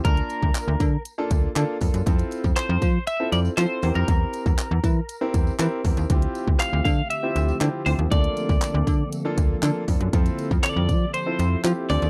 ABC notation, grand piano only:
X:1
M:4/4
L:1/16
Q:1/4=119
K:F
V:1 name="Grand piano"
[B,DFa]6 z3 [B,DFA]2 z [B,DFA]2 [B,A]2 | [CEFA]6 z3 [CEFA]2 z [CEFA]2 [CEGB]2- | [CEGB]4 z4 z [CEGB]2 z [CEGB]2 z2 | [CEFG]6 z3 [CEFG]2 z [CEFG]2 [CEFG]2 |
[B,DFA]6 z3 [B,DFA]2 z [B,DFA]2 [B,DFA]2 | [CEFA]6 z3 [CEFA]2 z [CEFG]2 [CDFA]2 |]